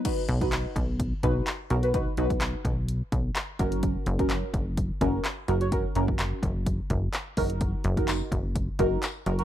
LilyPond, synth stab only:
\new Staff \with { instrumentName = "Synth stab" } { \time 4/4 \key b \major \tempo 4 = 127 <dis' fis' b'>16 r8 <dis' fis' b'>8. r4 <dis' fis' b'>8 r8 <fis' ais'>16 <fis' b'>16 | <dis' fis' b'>16 r16 <dis' fis' b'>4 r2 <cis' fis' ais'>8~ | <cis' fis' ais'>8 r16 <cis' fis' ais'>8. r4 <cis' fis' ais'>8 r8 <fis' ais'>16 <fis' cis''>16 | <cis' fis' ais'>16 r16 <cis' fis' ais'>4 r2 <dis' fis' ais'>8~ |
<dis' fis' ais'>8 r16 <dis' fis' ais'>8. r4 <dis' fis' ais'>8 r8 <fis' ais'>16 <fis' ais'>16 | }